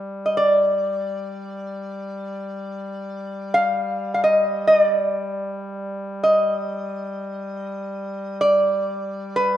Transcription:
0.00 9.57 G3 soft
0.26 0.35 D#5 soft
0.37 3.64 D5 medium
3.54 4.13 F5 medium
4.14 4.23 F5 medium
4.24 4.67 D#5 medium
4.67 4.79 D#5 medium
4.79 6.20 D5 medium
6.23 8.37 D#5 medium
8.41 9.39 D5 medium
9.36 9.57 B4 medium

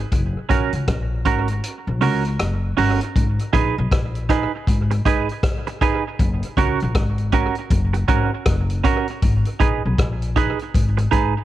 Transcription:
0.12 0.32 F#1 loud
0.12 kick loud
0.12 closed hi-hat medium
0.49 0.70 A#1 medium
0.49 0.71 C#4 medium
0.49 0.71 F#4 medium
0.49 0.72 A#4 medium
0.49 kick medium
0.49 closed hi-hat medium
0.73 0.86 C#2 medium
0.73 closed hi-hat medium
0.88 1.21 A#1 loud
0.88 kick loud
0.88 cross-stick loud
0.88 closed hi-hat medium
1.25 1.59 G#1 medium
1.25 1.47 C#4 medium
1.25 1.47 F#4 medium
1.25 1.48 A#4 medium
1.25 kick medium
1.25 closed hi-hat medium
1.48 closed hi-hat medium
1.64 closed hi-hat loud
1.87 2.03 A#1 loud
2.01 2.35 C#2 medium
2.01 2.23 C#4 medium
2.01 2.23 F#4 medium
2.01 2.24 A#4 loud
2.01 open hi-hat medium
2.25 closed hi-hat medium
2.39 2.73 F#1 medium
2.39 cross-stick loud
2.39 closed hi-hat medium
2.77 2.98 G1 loud
2.77 2.99 C#4 medium
2.77 2.99 F#4 medium
2.77 2.99 A#4 loud
2.77 open hi-hat medium
3.01 closed hi-hat medium
3.16 3.36 G#1 loud
3.16 kick loud
3.16 closed hi-hat medium
3.39 closed hi-hat soft
3.53 3.74 A#1 loud
3.53 3.75 D#4 medium
3.53 3.75 G#4 medium
3.53 3.75 B4 medium
3.53 kick medium
3.53 closed hi-hat medium
3.78 3.90 B1 loud
3.92 4.45 A#1 medium
3.92 kick loud
3.92 cross-stick loud
3.92 closed hi-hat medium
4.15 closed hi-hat soft
4.29 4.51 D#4 medium
4.29 4.51 G#4 medium
4.29 4.51 B4 medium
4.29 kick medium
4.29 cross-stick medium
4.29 closed hi-hat medium
4.67 5.01 G#1 loud
4.67 kick loud
4.67 closed hi-hat medium
4.91 muted clean electric guitar stroke soft
4.91 closed hi-hat medium
5.06 5.26 G#1 medium
5.06 5.27 D#4 medium
5.06 5.27 G#4 medium
5.06 5.27 B4 medium
5.06 kick medium
5.06 closed hi-hat medium
5.29 closed hi-hat soft
5.43 kick loud
5.43 cross-stick loud
5.43 closed hi-hat loud
5.67 muted clean electric guitar stroke soft
5.67 closed hi-hat soft
5.81 6.03 D#4 loud
5.81 6.03 G#4 loud
5.81 6.03 B4 loud
5.81 kick loud
5.81 closed hi-hat medium
6.19 6.39 F#1 loud
6.19 kick loud
6.19 closed hi-hat medium
6.43 closed hi-hat medium
6.57 6.77 C#2 medium
6.57 6.78 C#4 medium
6.57 6.79 F#4 medium
6.57 6.79 A#4 medium
6.57 kick medium
6.57 closed hi-hat medium
6.80 6.94 A#1 loud
6.80 closed hi-hat soft
6.95 7.48 G#1 medium
6.95 kick loud
6.95 cross-stick loud
6.95 closed hi-hat medium
7.18 closed hi-hat soft
7.32 7.54 C#4 medium
7.32 7.54 F#4 medium
7.32 7.55 A#4 medium
7.32 kick medium
7.32 closed hi-hat medium
7.55 closed hi-hat soft
7.70 8.04 F#1 loud
7.70 kick loud
7.70 closed hi-hat loud
7.94 muted clean electric guitar stroke soft
7.94 closed hi-hat medium
8.08 8.29 G#1 medium
8.08 8.30 C#4 medium
8.08 8.30 F#4 medium
8.08 8.30 A#4 medium
8.08 kick loud
8.08 closed hi-hat medium
8.46 8.79 F#1 loud
8.46 kick loud
8.46 cross-stick loud
8.46 closed hi-hat loud
8.70 closed hi-hat medium
8.84 9.05 C#4 loud
8.84 9.06 F#4 loud
8.84 9.06 A#4 loud
8.84 kick loud
8.84 closed hi-hat medium
9.08 closed hi-hat soft
9.22 9.43 G#1 loud
9.22 kick loud
9.22 closed hi-hat medium
9.45 closed hi-hat medium
9.60 9.80 A#1 loud
9.60 9.81 D#4 medium
9.60 9.82 G#4 medium
9.60 9.82 B4 medium
9.60 kick loud
9.60 closed hi-hat medium
9.85 9.97 B1 loud
9.98 10.52 A#1 loud
9.98 kick loud
9.98 cross-stick loud
9.98 closed hi-hat medium
10.22 closed hi-hat soft
10.36 10.57 D#4 medium
10.36 10.58 G#4 medium
10.36 10.58 B4 medium
10.36 kick medium
10.36 closed hi-hat medium
10.59 closed hi-hat soft
10.74 11.07 G#1 loud
10.74 kick loud
10.74 closed hi-hat loud
10.97 muted clean electric guitar stroke medium
10.97 closed hi-hat medium
11.11 11.33 G#1 medium
11.11 11.33 D#4 medium
11.11 11.33 G#4 medium
11.11 11.33 B4 medium
11.11 kick medium
11.11 closed hi-hat medium

